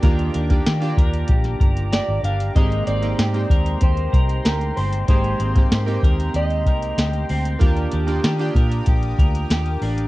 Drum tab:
HH |xxxxxxxxxxxxx-xx|xxxxxxxxxxxxxxox|xxxxxxxxxxxxxxox|xxxxxxxxxxxxxxox|
SD |----o----o--o---|----o-------o---|----o-------o---|----o-------o---|
BD |o--o--o-o-o-----|o-----o-o-o-----|o--o--o---o-----|o-----o-o-o-----|